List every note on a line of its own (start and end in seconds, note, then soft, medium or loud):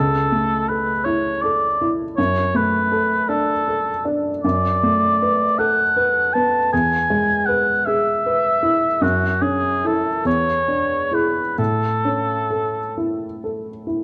0.00 2.14 C#2 soft
0.00 0.70 A4 medium
0.32 0.91 A3 soft
0.69 1.29 A4 soft
0.69 1.06 B4 soft
1.04 1.66 E4 soft
1.04 1.43 C#5 medium
1.42 2.03 A4 soft
1.42 1.91 D5 medium
1.81 2.18 E4 soft
2.17 4.40 F#2 soft
2.17 2.57 C#5 medium
2.55 3.14 A3 soft
2.55 3.30 B4 medium
2.92 3.52 A4 soft
3.29 3.90 D4 soft
3.29 4.05 A4 medium
3.68 4.29 A4 soft
4.05 4.44 D4 soft
4.43 6.68 F#2 soft
4.43 5.60 D5 medium
4.83 5.43 A3 soft
5.22 5.81 B4 soft
5.59 6.19 A4 soft
5.59 6.35 F#5 medium
5.97 6.57 B4 soft
6.33 6.73 B3 soft
6.33 6.72 A5 medium
6.73 8.99 E2 soft
6.73 7.47 G#5 medium
7.10 7.70 G#3 soft
7.46 8.09 B4 soft
7.46 7.87 F#5 medium
7.85 8.48 G#4 soft
7.85 9.03 E5 medium
8.26 8.87 B4 soft
8.63 9.02 E4 soft
9.01 10.21 F#2 soft
9.01 9.43 F#4 medium
9.41 10.08 C#4 soft
9.41 9.88 G#4 medium
9.84 10.22 E4 soft
9.84 10.22 A4 soft
9.84 10.26 A4 soft
10.25 11.54 E2 soft
10.25 11.16 C#5 medium
10.68 11.40 D4 soft
11.11 11.54 E4 soft
11.11 11.54 G#4 soft
11.11 11.58 B4 soft
11.58 14.04 A2 soft
11.58 12.95 A4 soft
12.05 12.79 C#4 soft
12.51 13.24 A4 soft
12.97 13.70 E4 soft
13.44 14.04 A4 soft
13.87 14.04 E4 soft